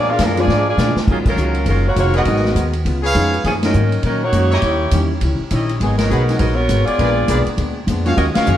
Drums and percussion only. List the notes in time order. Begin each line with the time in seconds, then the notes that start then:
0.19 kick, snare, hi-hat pedal, ride
0.37 ride
0.49 snare
0.78 snare, hi-hat pedal
0.96 snare
1.08 kick, crash
1.26 kick, crash
1.37 hi-hat pedal
1.55 ride
1.66 kick, ride
1.96 kick, hi-hat pedal, ride
2.14 ride
2.25 kick, ride
2.36 snare
2.45 snare
2.56 kick, hi-hat pedal, ride
2.73 ride
2.85 kick, ride
3.15 kick, hi-hat pedal, ride
3.34 ride
3.44 kick, snare, ride
3.63 snare, ride
3.74 hi-hat pedal
3.92 ride
4.03 kick, ride
4.33 kick, hi-hat pedal, ride
4.62 kick, ride
4.91 kick, hi-hat pedal, ride
5.21 kick, ride
5.51 kick, hi-hat pedal, ride
5.69 ride
5.81 kick, ride
5.99 snare, ride
6.11 hi-hat pedal
6.29 snare, ride
6.39 kick, ride
6.69 kick, hi-hat pedal, ride
6.87 ride
6.99 kick, ride
7.28 kick, hi-hat pedal, ride
7.46 ride
7.58 kick, ride
7.88 kick, hi-hat pedal, ride
8.06 ride
8.17 kick, ride
8.35 snare, ride
8.46 hi-hat pedal